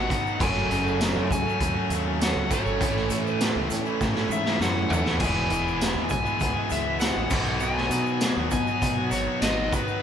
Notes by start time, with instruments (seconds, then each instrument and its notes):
Already playing: overdriven electric guitar B2 B3 F#4, twelve-string acoustic guitar F#3 B3 D#4, electric slide guitar F#5
0.05 overdriven electric guitar B2 F#3 B3 D#4
0.10 overdriven electric guitar D#3 B3 F#4, twelve-string acoustic guitar B3 F#4, kick, closed hi-hat
0.22 overdriven electric guitar F#3 B3 D#4 F#4
0.26 shaker
0.37 fingered electric bass F#1, overdriven electric guitar F#2 C#3 F#3 A3 C#4, kick
0.41 overdriven electric guitar F#3 F#4, twelve-string acoustic guitar A4, electric slide guitar G#5, crash, shaker
0.56 snare
0.66 overdriven electric guitar C#3 F#3 A3 C#4, twelve-string acoustic guitar A4
0.70 fingered electric bass F#1, twelve-string acoustic guitar F#3, overdriven electric guitar F#4, closed hi-hat
0.87 shaker
0.97 overdriven electric guitar F#2 C#3 F#3 A3 C#4, twelve-string acoustic guitar A4, snare, closed hi-hat, tambourine
1.02 overdriven electric guitar F#4, shaker
1.13 fingered electric bass F#2, overdriven electric guitar F#3 A3 C#4 F#4
1.28 fingered electric bass C#2, overdriven electric guitar F#3 A3 C#4 F#4, twelve-string acoustic guitar C#4 A4, electric slide guitar G#5, muted overdriven electric guitar stroke, kick, closed hi-hat, shaker
1.43 overdriven electric guitar F#3 A3 C#4 F#4
1.49 shaker
1.59 fingered electric bass D#2, twelve-string acoustic guitar F#3 A3 C#4 A4, kick, closed hi-hat, shaker
1.73 overdriven electric guitar F#3 A3 C#4 F#4
1.88 fingered electric bass D#2, overdriven electric guitar C#3 F#3 A3 C#4, closed hi-hat, shaker
1.93 overdriven electric guitar F#4
2.03 overdriven electric guitar F#3 A3 C#4 F#4
2.08 overdriven electric guitar C#4
2.18 overdriven electric guitar F#2 C#3 F#3 A3 C#4, twelve-string acoustic guitar A4, closed hi-hat, tambourine
2.22 overdriven electric guitar F#4, electric slide guitar F#5, snare, shaker
2.36 fingered electric bass C#2
2.48 overdriven electric guitar C#3 F#3 A3 C#4, twelve-string acoustic guitar A4, kick, closed hi-hat, shaker
2.53 overdriven electric guitar F#2 F#4, electric slide guitar C#5
2.63 fingered electric bass G#1, overdriven electric guitar F#3 A3 C#4 F#4, shaker
2.79 fingered electric bass A1, overdriven electric guitar A2 E3 A3 C#4 E4, twelve-string acoustic guitar A4, kick, closed hi-hat, shaker
2.96 snare
3.07 fingered electric bass A2, overdriven electric guitar E3 A3 C#4 E4, twelve-string acoustic guitar A4, closed hi-hat, shaker
3.27 shaker
3.31 electric slide guitar B4
3.39 overdriven electric guitar A2 E3 A3 C#4 E4, snare, closed hi-hat, tambourine, shaker
3.43 twelve-string acoustic guitar A4
3.55 fingered electric bass C#2, overdriven electric guitar A3 C#4 E4
3.70 fingered electric bass A2, overdriven electric guitar E3 A3 C#4 E4, twelve-string acoustic guitar C#4 A4, muted overdriven electric guitar stroke, closed hi-hat, shaker
3.74 twelve-string acoustic guitar A3
3.85 overdriven electric guitar A3 C#4 E4, shaker
4.01 fingered electric bass A2, twelve-string acoustic guitar E3 C#4 A4, kick, snare, shaker
4.14 overdriven electric guitar A3 C#4 E4, snare
4.29 fingered electric bass G#2, overdriven electric guitar E3 A3 C#4 E4, electric slide guitar E5, shaker
4.43 overdriven electric guitar A3 C#4 E4, snare
4.47 shaker
4.58 fingered electric bass F#2, overdriven electric guitar A2 E3 A3 C#4 E4, twelve-string acoustic guitar A4, electric slide guitar F#5, snare, shaker
4.88 fingered electric bass E2, overdriven electric guitar E3 A3 C#4 E4, floor tom
4.93 overdriven electric guitar A2, shaker
5.03 overdriven electric guitar A3 C#4 E4, snare
5.08 shaker
5.18 fingered electric bass E1, twelve-string acoustic guitar E2 B2, overdriven electric guitar E2 B2 E3 G#3 B3 E4, electric slide guitar G#5, kick, crash
5.22 overdriven electric guitar E3, twelve-string acoustic guitar G#4, shaker
5.49 fingered electric bass E1, overdriven electric guitar E3 G#3 B3 E4, twelve-string acoustic guitar G#4, closed hi-hat, shaker
5.68 shaker
5.79 twelve-string acoustic guitar E2 B2 G#4, overdriven electric guitar E3 G#3 B3 E4, snare, closed hi-hat, tambourine, shaker
5.95 fingered electric bass E2, overdriven electric guitar G#3 B3 E4
6.09 fingered electric bass B1, overdriven electric guitar E3, twelve-string acoustic guitar E3 B3 E4 G#4, electric slide guitar G#5, muted overdriven electric guitar stroke, kick, closed hi-hat, shaker
6.14 overdriven electric guitar G#3 B3 E4
6.23 overdriven electric guitar G#3 B3 E4, shaker
6.27 overdriven electric guitar E4
6.39 fingered electric bass C#2, twelve-string acoustic guitar E3 B3 E4 G#4, kick, closed hi-hat, shaker
6.54 overdriven electric guitar G#3 B3 E4
6.68 fingered electric bass C#2, overdriven electric guitar E3 G#3 B3 E4, electric slide guitar E5, closed hi-hat, shaker
6.84 overdriven electric guitar G#3 B3 E4
6.99 twelve-string acoustic guitar E2 B2 G#4, overdriven electric guitar E3 G#3 B3 E4, electric slide guitar F#5, snare, closed hi-hat, tambourine, shaker
7.16 fingered electric bass A1
7.28 fingered electric bass B1, overdriven electric guitar B2 D#3 F#3 B3 D#4 F#4, twelve-string acoustic guitar D#4, kick, crash, shaker
7.45 overdriven electric guitar F#3 B3 D#4 F#4, shaker
7.59 overdriven electric guitar B2 D#3 F#3 B3 F#4, twelve-string acoustic guitar D#4, electric slide guitar G#5, shaker
7.63 overdriven electric guitar D#4
7.77 snare
7.90 fingered electric bass B2, overdriven electric guitar B2 D#3 F#3 B3 D#4 F#4, twelve-string acoustic guitar D#4, closed hi-hat, shaker
8.06 shaker
8.20 overdriven electric guitar B2 D#3 F#3 B3 D#4 F#4, twelve-string acoustic guitar D#4, snare, closed hi-hat, tambourine, shaker
8.36 fingered electric bass D#2, overdriven electric guitar B3 D#4 F#4
8.41 overdriven electric guitar F#3
8.51 fingered electric bass B2, overdriven electric guitar B2 F#3 B3 D#4, twelve-string acoustic guitar B3 D#4 F#4, electric slide guitar G#5, muted overdriven electric guitar stroke, kick, closed hi-hat, shaker
8.67 overdriven electric guitar F#3 B3 D#4 F#4, shaker
8.80 fingered electric bass B2, twelve-string acoustic guitar F#3 B3 D#4 F#4, kick, closed hi-hat, shaker
8.97 overdriven electric guitar F#3 B3 D#4 F#4
9.11 fingered electric bass G#1, overdriven electric guitar B2 D#3 F#3 B3 D#4 F#4, electric slide guitar C#5, closed hi-hat, shaker
9.25 overdriven electric guitar F#3 B3 D#4 F#4
9.39 fingered electric bass G#1, overdriven electric guitar B2 D#3 F#3 B3 F#4, twelve-string acoustic guitar D#4, electric slide guitar D#5, snare, closed hi-hat, tambourine, shaker
9.45 overdriven electric guitar D#4
9.70 overdriven electric guitar B2 D#3 F#3 B3 F#4, twelve-string acoustic guitar D#4, kick, closed hi-hat, shaker
9.74 overdriven electric guitar D#4, electric slide guitar B4
9.85 overdriven electric guitar F#3 B3 D#4 F#4, shaker